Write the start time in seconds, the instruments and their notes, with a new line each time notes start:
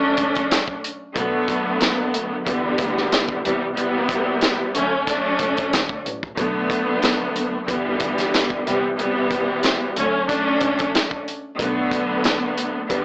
Already playing: string section F#3 A3 C#4 D4
0.17 double bass C#2, kick, closed hi-hat
0.35 kick, closed hi-hat
0.51 snare, closed hi-hat
0.68 kick
0.84 closed hi-hat
1.14 double bass B1, string section D3 F#3 A3 B3, kick, closed hi-hat
1.48 kick, closed hi-hat
1.81 snare, closed hi-hat
2.14 closed hi-hat
2.44 double bass E2, string section D3 E3 G3 B3, kick, closed hi-hat
2.78 double bass D2, kick, closed hi-hat
2.97 snare
3.12 snare, closed hi-hat
3.29 kick
3.44 double bass C2, string section C3 E3 G3 B3, closed hi-hat
3.74 string section C3 E3 G3 B3, closed hi-hat
4.09 kick, closed hi-hat
4.41 snare, closed hi-hat
4.74 double bass D2, string section D3 F#3 A3 C#4, closed hi-hat
5.07 string section F#3 A3 C#4 D4, kick, snare, closed hi-hat
5.39 double bass C#2, kick, closed hi-hat
5.57 kick, closed hi-hat
5.73 double bass D2, snare, closed hi-hat
5.89 kick
6.05 double bass A1, closed hi-hat
6.23 kick
6.36 double bass B1, string section D3 F#3 A3 B3, kick, closed hi-hat
6.70 kick, closed hi-hat
7.02 snare, closed hi-hat
7.36 closed hi-hat
7.66 double bass E2, string section D3 E3 G3 B3, kick, closed hi-hat
8.00 double bass D2, kick, closed hi-hat
8.18 snare, closed hi-hat
8.34 snare, closed hi-hat
8.50 kick
8.65 double bass C2, string section C3 E3 G3 B3, closed hi-hat
8.95 string section C3 E3 G3 B3, closed hi-hat
9.31 kick, closed hi-hat
9.63 snare, closed hi-hat
9.95 double bass D2, string section D3 F#3 A3 C#4, closed hi-hat
10.28 string section F#3 A3 C#4 D4, kick, snare, closed hi-hat
10.61 double bass C#2, kick, closed hi-hat
10.79 kick, closed hi-hat
10.95 snare, closed hi-hat
11.11 kick
11.28 closed hi-hat
11.58 double bass B1, string section D3 F#3 A3 B3, kick, closed hi-hat
11.91 kick, closed hi-hat
12.24 snare, closed hi-hat
12.57 closed hi-hat
12.87 double bass E2, string section D3 E3 G3 B3, kick, closed hi-hat